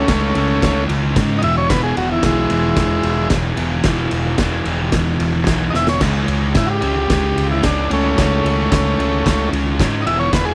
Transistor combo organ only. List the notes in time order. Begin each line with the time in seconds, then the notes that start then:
Already playing: A3 C#4
1.38 D#5
1.44 E5
1.58 C#5
1.69 B4
1.83 G#4
1.97 F#4
2.12 E4
2.26 G#3 E4
5.70 D#5
5.76 E5
5.89 C#5
6.57 E4
6.66 F#4
6.70 G4
7.51 E4
7.66 D4
7.93 A3 C#4
10.02 D#5
10.07 E5
10.19 C#5
10.33 B4
10.45 G#4